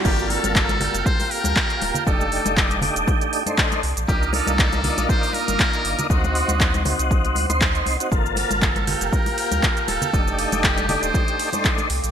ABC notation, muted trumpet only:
X:1
M:4/4
L:1/16
Q:"Swing 16ths" 1/4=119
K:Gm
V:1 name="Muted trumpet"
G2 A6 c2 B6 | A6 z8 z2 | G2 A6 c2 B6 | ^F6 z8 z2 |
z4 A4 B6 A2- | A4 G3 c6 z3 |]